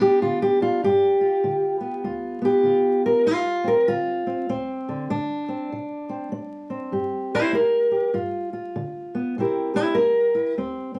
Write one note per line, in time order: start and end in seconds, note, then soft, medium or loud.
0.00 0.16 D2 medium
0.00 0.79 B3 soft
0.00 0.58 D4 soft
0.00 0.21 G4 loud
0.22 0.78 D3 medium
0.22 0.41 F4 medium
0.42 0.62 G4 loud
0.61 1.20 D4 soft
0.61 0.82 F4 medium
0.84 1.39 G2 medium
0.84 2.05 G4 loud
1.21 2.03 F4 soft
1.44 2.00 D3 medium
1.80 2.40 B3 soft
2.04 2.60 D2 medium
2.04 2.64 F4 soft
2.42 3.24 B3 soft
2.42 3.06 G4 loud
2.63 3.20 D3 medium
2.63 3.23 F4 soft
3.06 3.26 A#4 medium
3.25 3.82 D2 medium
3.25 3.67 F4 loud
3.64 4.26 C4 soft
3.64 3.88 A#4 medium
3.88 4.44 D3 medium
3.88 4.49 F4 medium
4.27 4.49 C4 soft
4.49 5.05 D2 medium
4.49 5.10 C4 medium
4.89 5.10 D3 soft
5.10 5.66 D3 medium
5.10 6.93 D4 medium
5.48 5.69 C4 soft
5.72 6.27 C3 medium
6.09 6.31 C4 soft
6.32 6.68 C4 medium
6.70 7.51 C4 soft
6.92 7.48 G2 medium
6.92 7.90 G4 soft
7.35 7.54 E4 loud
7.35 7.54 C5 loud
7.53 8.09 C4 medium
7.53 8.15 A#4 loud
7.91 8.12 G4 soft
8.14 8.70 G2 medium
8.14 8.51 F4 medium
8.53 9.34 F4 soft
8.76 9.31 D3 medium
9.15 9.34 B3 soft
9.38 9.93 C3 medium
9.38 9.97 C4 soft
9.38 9.75 E4 soft
9.38 9.73 G4 soft
9.38 9.76 A#4 soft
9.74 9.96 E4 medium
9.74 10.55 G4 soft
9.74 9.94 C5 loud
9.95 10.53 C4 medium
9.95 10.56 A#4 loud
10.35 10.55 E4 soft
10.57 10.99 D2 medium
10.57 10.93 C4 soft
10.94 10.99 C4 soft